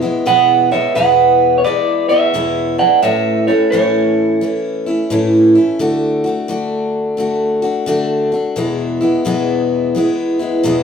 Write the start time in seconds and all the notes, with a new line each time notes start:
0.01 E3 G#3 B3 E4
0.26 E2 B2 E3 G#3 B3 E4 B4 F#5
0.71 E3 G#3 B3 E4 C#5 E5
0.95 E2 B2 E3 G#3 B3 E4 B4 F#5
1.58 C#5
1.64 E3 G#3 B3 E4 B4 D5
2.09 E3 G#3 B3 E4 C#5 E5
2.34 E2 B2 E3 G#3 B3 E4
2.78 E3 G#3 B3 E4 D5 F#5
3.02 A2 E3 A3 C#4 E4 C#5 E5
3.47 A3 C#4 E4 A4 C#5
3.71 A2 E3 A3 C#4 E4 A4 C#5
4.41 E3 A3 C#4 E4
4.86 A3 C#4 E4
5.10 A2 E3 A3 C#4 E4
5.55 A3 C#4 E4
5.79 D3 A3 D4 F#4
6.24 A3 D4 F#4
6.48 D3 A3 D4 F#4
7.17 D3 A3 D4 F#4
7.62 A3 D4 F#4
7.86 D3 A3 D4 F#4
8.32 A3 D4 F#4
8.56 E2 B2 E3 G#3 B3 E4
9.01 E3 G#3 B3 E4
9.25 E2 B2 E3 G#3 B3 E4
9.95 E3 G#3 B3 E4
10.39 E3 G#3 B3 E4
10.63 E2 B2 E3 G#3 B3 E4